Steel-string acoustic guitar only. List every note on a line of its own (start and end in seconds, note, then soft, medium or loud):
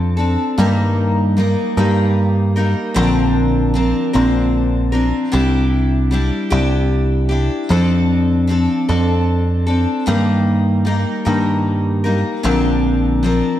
0.00 0.19 F3 medium
0.00 0.19 C4 medium
0.00 0.17 D4 medium
0.00 0.16 A4 medium
0.17 0.59 C4 medium
0.17 0.58 D4 medium
0.17 0.57 A4 medium
0.58 1.37 G2 medium
0.58 1.38 D#3 medium
0.58 1.35 G3 medium
0.58 1.37 A#3 medium
0.58 1.38 D#4 medium
0.58 1.39 A#4 medium
1.37 1.77 G3 medium
1.37 1.77 A#3 medium
1.37 1.77 D#4 medium
1.37 1.76 A#4 medium
1.77 2.57 G2 medium
1.77 2.57 D#3 medium
1.77 2.57 G3 medium
1.77 2.57 A#3 medium
1.77 2.56 D#4 medium
1.77 2.55 A#4 medium
2.56 2.95 G3 medium
2.56 2.96 A#3 soft
2.56 2.96 D#4 medium
2.56 2.96 A#4 medium
2.94 3.74 A#2 medium
2.94 3.75 D3 medium
2.94 3.73 F3 medium
2.94 3.75 C4 medium
2.94 3.75 D4 medium
2.94 3.75 A#4 medium
3.74 4.13 F3 medium
3.74 4.13 C4 medium
3.74 4.13 D4 medium
3.74 4.12 A#4 medium
4.13 4.94 A#2 medium
4.13 4.94 D3 medium
4.13 4.94 F3 medium
4.13 4.94 C4 medium
4.13 4.93 D4 medium
4.13 4.91 A#4 medium
4.92 5.32 F3 soft
4.92 5.33 C4 soft
4.92 5.32 D4 medium
4.92 5.33 A#4 medium
5.32 6.12 C3 medium
5.32 6.10 G3 medium
5.32 6.11 D4 medium
5.32 6.12 E4 medium
5.32 6.13 G4 medium
6.11 6.51 G3 medium
6.11 6.50 D4 medium
6.11 6.50 E4 medium
6.11 6.49 G4 medium
6.50 7.31 C3 medium
6.50 7.31 G3 medium
6.50 7.31 D4 medium
6.50 7.30 E4 medium
6.50 7.28 G4 medium
7.29 7.69 D4 medium
7.29 7.70 E4 medium
7.29 7.70 G4 medium
7.69 8.46 F3 medium
7.69 8.48 C4 medium
7.69 8.49 D4 medium
7.69 8.50 A4 medium
8.47 8.88 F3 medium
8.47 8.88 C4 medium
8.47 8.88 D4 medium
8.47 8.87 A4 medium
8.89 9.69 F3 medium
8.89 9.69 C4 medium
8.89 9.67 D4 medium
8.89 9.65 A4 medium
9.67 10.07 C4 soft
9.67 10.07 D4 medium
9.67 10.07 A4 medium
10.06 10.86 G2 medium
10.06 10.86 D#3 medium
10.06 10.84 G3 medium
10.06 10.86 A#3 medium
10.06 10.86 D#4 medium
10.06 10.87 A#4 medium
10.85 11.25 G3 medium
10.85 11.25 A#3 medium
10.85 11.25 D#4 medium
10.85 11.24 A#4 medium
11.25 12.06 G2 medium
11.25 12.06 D#3 medium
11.25 12.05 G3 medium
11.25 12.05 A#3 medium
11.25 12.04 D#4 medium
11.25 12.03 A#4 medium
12.04 12.44 G3 soft
12.04 12.44 A#3 medium
12.04 12.44 D#4 medium
12.04 12.44 A#4 medium
12.43 13.23 A#2 medium
12.43 13.23 D3 medium
12.43 13.21 F3 medium
12.43 13.24 C4 medium
12.43 13.24 D4 medium
12.43 13.24 A#4 medium
13.23 13.60 F3 medium
13.23 13.60 C4 medium
13.23 13.60 D4 medium
13.23 13.60 A#4 medium